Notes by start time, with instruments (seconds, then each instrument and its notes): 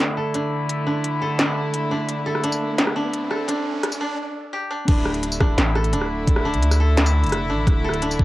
Already playing: string section D3 A3 E4, koto D4 A4 D5, riser
0.17 koto A4
0.34 koto D4, closed hi-hat
0.69 closed hi-hat
0.87 koto D4
1.04 closed hi-hat
1.22 koto A4
1.39 koto D4, snare, closed hi-hat
1.74 closed hi-hat
1.91 koto D4
2.09 closed hi-hat
2.26 koto A4
2.35 cross-stick
2.44 koto D4, closed hi-hat
2.52 tambourine
2.78 snare, closed hi-hat
2.87 cross-stick
2.96 koto D4
3.14 closed hi-hat
3.31 koto A4, cross-stick
3.48 koto D4, closed hi-hat
3.83 cross-stick, closed hi-hat
3.92 tambourine
4.01 koto D4
4.53 koto G4
4.71 koto D4
4.87 808-style bass D1, string section D3 A3 E4, koto D4, kick, closed hi-hat, crash
5.05 cross-stick
5.14 closed hi-hat
5.23 closed hi-hat
5.32 tambourine
5.40 koto D4, kick, cross-stick
5.58 808-style bass A1, snare, closed hi-hat
5.75 koto A4, cross-stick
5.84 closed hi-hat
5.93 808-style bass D1, koto D4, closed hi-hat
6.02 cross-stick
6.28 kick, closed hi-hat
6.36 cross-stick
6.45 koto D4
6.53 808-style bass D2, closed hi-hat
6.63 closed hi-hat
6.71 cross-stick, tambourine
6.80 koto A4
6.97 koto D4, cross-stick, snare, closed hi-hat
7.06 tambourine
7.23 808-style bass F1, closed hi-hat
7.26 closed hi-hat
7.29 cross-stick, closed hi-hat
7.32 closed hi-hat
7.49 808-style bass A1, koto D4
7.67 808-style bass D1, kick, cross-stick, closed hi-hat
7.84 koto A4
7.89 cross-stick
7.94 closed hi-hat
8.02 koto D4, closed hi-hat
8.11 tambourine
8.19 kick